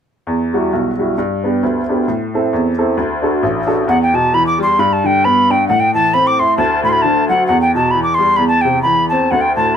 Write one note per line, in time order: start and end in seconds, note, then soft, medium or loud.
0.27 0.71 E2 medium
0.54 0.90 G3 soft
0.54 0.90 E4 soft
0.54 0.90 F#4 soft
0.73 1.17 B1 medium
0.98 1.14 G3 soft
0.98 1.14 E4 soft
0.98 1.15 F#4 soft
1.18 1.62 G2 medium
1.44 1.80 B3 soft
1.44 1.81 D4 soft
1.44 1.81 G4 soft
1.63 2.07 D2 soft
1.89 2.04 B3 soft
1.89 2.05 D4 soft
1.89 2.05 G4 soft
2.08 2.52 A2 medium
2.34 2.70 C4 soft
2.34 2.70 E4 soft
2.34 2.71 A4 soft
2.53 2.97 E2 medium
2.78 2.94 C4 soft
2.78 2.94 E4 soft
2.78 2.94 A4 soft
2.97 3.42 D2 medium
3.22 3.59 D4 soft
3.22 3.60 F#4 soft
3.22 3.60 A4 soft
3.43 3.87 A1 medium
3.67 3.83 D4 soft
3.67 3.83 F#4 soft
3.67 3.83 A4 soft
3.88 4.76 E2 medium
3.88 4.01 F#5 medium
4.02 4.16 G5 medium
4.13 4.33 B2 soft
4.13 4.36 A5 medium
4.33 4.59 E3 soft
4.33 4.46 B5 medium
4.47 4.59 D6 medium
4.59 4.78 G3 soft
4.59 4.81 C6 medium
4.79 5.66 G2 medium
4.79 4.94 B5 medium
4.93 5.08 A5 medium
5.04 5.23 D3 soft
5.04 5.26 G5 medium
5.25 5.50 B3 soft
5.25 5.52 B5 medium
5.50 5.69 D4 soft
5.50 5.67 G5 medium
5.68 6.57 A2 medium
5.68 5.81 F#5 medium
5.80 5.94 G5 medium
5.94 6.13 E3 soft
5.94 6.15 A5 medium
6.14 6.39 C4 soft
6.14 6.29 B5 medium
6.27 6.41 D6 medium
6.39 6.58 E4 soft
6.39 6.57 C6 medium
6.58 7.46 D2 medium
6.58 6.83 A5 medium
6.83 7.03 A2 soft
6.83 6.90 B5 medium
6.89 7.03 B5 medium
6.89 6.94 C6 medium
7.02 7.30 D3 soft
7.02 7.28 A5 medium
7.29 7.49 F#3 soft
7.29 7.46 F#5 medium
7.47 8.37 E2 medium
7.47 7.60 F#5 medium
7.61 7.74 G5 medium
7.75 7.94 B2 soft
7.75 7.92 A5 medium
7.91 8.20 E3 soft
7.91 8.03 B5 medium
8.03 8.16 D6 medium
8.15 8.38 C6 medium
8.19 8.38 G3 soft
8.36 9.27 E2 medium
8.36 8.47 B5 medium
8.48 8.63 A5 medium
8.61 8.84 C3 soft
8.61 8.82 G5 medium
8.83 9.10 E3 soft
8.83 9.08 B5 medium
9.09 9.30 C4 soft
9.09 9.32 A5 medium
9.31 9.77 D2 medium
9.31 9.43 F#5 medium
9.41 9.55 G5 medium
9.56 9.75 A2 soft
9.56 9.76 A5 medium